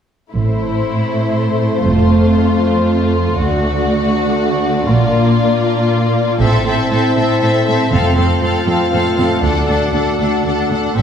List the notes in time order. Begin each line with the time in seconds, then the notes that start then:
0.32 A1 A2 A3 C4 E4 A4 C5
1.84 F1 F2 F4
3.37 D2 A3 D4 F#4 D5
4.89 A#1 A#2 A#3 F4
6.40 A1 A2 C4 E4 A4 E5
6.66 A2 C4 A4 E5
6.91 A2 C4 A4 E5
7.17 A2 C4 A4 E5
7.41 A2 C4 A4 E5
7.66 A2 C4 A4 E5
7.92 F1 F2 A3 C4 F4 A4 F5
8.17 F2 C4 A4 F5
8.42 F2 C4 A4 F5
8.67 F2 C4 A4 F5
8.92 F2 C4 A4 F5
9.17 F2 C4 A4 F5
9.43 D2 D4 F#4 A4 F#5
9.68 D2 D4 A4 F#5
9.93 D2 D4 A4 F#5
10.19 D2 D4 A4 F#5
10.45 D2 D4 A4 F#5
10.70 D2 D4 A4 F#5
10.96 A1 A2 C4 E4 A4 E5